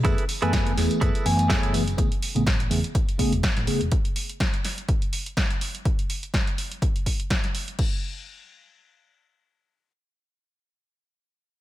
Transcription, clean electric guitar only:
X:1
M:4/4
L:1/16
Q:"Swing 16ths" 1/4=124
K:F#m
V:1 name="Clean electric guitar"
[EGAB]2 z [EGAB]3 z2 [EGAB]2 z2 [EGAc]2 z2 | z16 | z16 | z16 |
z16 | z16 |]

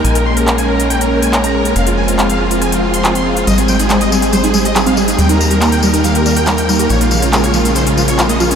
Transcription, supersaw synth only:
X:1
M:4/4
L:1/16
Q:1/4=140
K:Bbdor
V:1 name="Supersaw synth"
a B c' B B a B B g B B a B b B B | f F a F F f F F a F F c' F c' F F | e A g A A e A A c A A e A f A A | g B b B B g B B f B B g B g B B |
d F f F F d F F c F F d F e F F |]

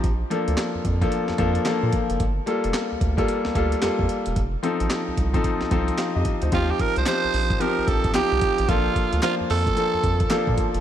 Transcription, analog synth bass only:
X:1
M:4/4
L:1/16
Q:"Swing 16ths" 1/4=111
K:Bb
V:1 name="Analog synth bass" clef=bass
B,,,2 z D,, z F,, F,,2 z F,, F,,2 z B,, z _G,,, | G,,,2 z F,,, z D,, D,,2 z D,, D,,2 F,, F,, z =E,,, | F,,,2 z A,,, z C,, C,,2 z C,, C,,2 z F,, z D,, | E,,2 z C,, z B,,, B,,,2 z B,,, B,,,2 C,, C,, z A,,, |
B,,,2 z D,, z F,, F,,2 z F,, F,,2 z B,, z _G,,, |]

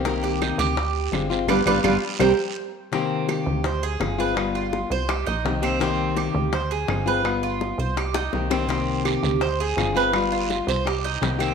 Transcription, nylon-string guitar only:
X:1
M:4/4
L:1/8
Q:1/4=166
K:Cm
V:1 name="Nylon-string guitar"
[C,E,B,CG]4 z2 [D,A,CF] [A,CF] | [G,=B,D] [G,B,D] [G,B,D] z [G,_B,C] z3 | [C,E,B,CG]4 z2 [D,A,CF] [A,CF] | [G,=B,F]4 z2 [E,_B,CG] [E,B,CG] |
[C,E,B,CG]4 z2 [D,A,CF] [A,CF] | [G,=B,F]4 z2 [E,_B,CG] [E,B,CG] | [C,E,B,CG]4 z2 [D,A,CF] [A,CF] | [G,=B,F]4 z2 [E,_B,CG] [E,B,CG] |]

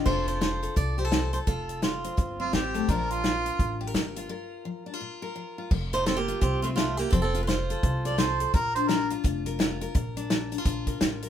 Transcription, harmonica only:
X:1
M:4/4
L:1/8
Q:"Swing" 1/4=170
K:Fmix
V:1 name="Harmonica"
z8 | z4 z F G2 | B F4 z3 | z8 |
z8 | z4 z d c2 | B c B z4 z | z8 |]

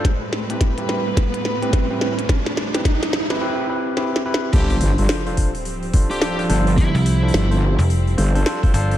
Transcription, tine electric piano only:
X:1
M:4/4
L:1/16
Q:"Swing 16ths" 1/4=107
K:Gmix
V:1 name="Tine electric piano"
z3 [CEGB]2 [CEGB]2 z4 [CEGB]2 [CEGB]2 z | z3 [CEGB] z3 [CEGB] [CEGB]2 [CEGB]2 [CEGB]2 [CEGB]2 | [DFAc]3 [DFAc]2 [DFAc]2 z3 [DFAc] [DFAc] [DFAc] [DFAc] [DFAc]2 | z3 [DFAc]2 [DFAc]2 z3 [DFAc] [DFAc] [DFAc] [DFAc] [DFAc]2 |]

